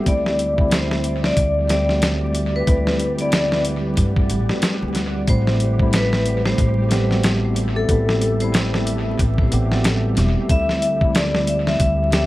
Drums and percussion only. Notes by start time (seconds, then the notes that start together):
0.06 kick, closed hi-hat
0.26 snare
0.39 closed hi-hat
0.58 kick
0.71 snare, closed hi-hat
0.91 snare
1.04 closed hi-hat
1.24 snare
1.37 kick, closed hi-hat
1.69 snare, closed hi-hat
1.89 snare
2.02 snare, closed hi-hat
2.35 closed hi-hat
2.67 kick, closed hi-hat
2.87 snare
3.00 closed hi-hat
3.19 closed hi-hat
3.32 snare, closed hi-hat
3.52 snare
3.65 closed hi-hat
3.97 kick, closed hi-hat
4.16 kick
4.30 closed hi-hat
4.49 snare
4.62 snare, closed hi-hat
4.95 snare, closed hi-hat
5.28 kick, closed hi-hat
5.47 snare
5.60 closed hi-hat
5.79 kick
5.93 snare, closed hi-hat
6.13 snare
6.26 closed hi-hat
6.46 snare
6.58 kick, closed hi-hat
6.91 snare, closed hi-hat
7.11 snare
7.23 snare, closed hi-hat
7.56 closed hi-hat
7.89 kick, closed hi-hat
8.09 snare
8.21 closed hi-hat
8.40 closed hi-hat
8.54 snare, closed hi-hat
8.74 snare
8.87 closed hi-hat
9.19 kick, closed hi-hat
9.38 kick
9.52 closed hi-hat
9.72 snare
9.84 snare, closed hi-hat
10.17 snare, closed hi-hat
10.49 kick, closed hi-hat
10.69 snare
10.82 closed hi-hat
11.01 kick
11.15 snare, closed hi-hat
11.35 snare
11.47 closed hi-hat
11.67 snare
11.80 kick, closed hi-hat
12.12 snare, closed hi-hat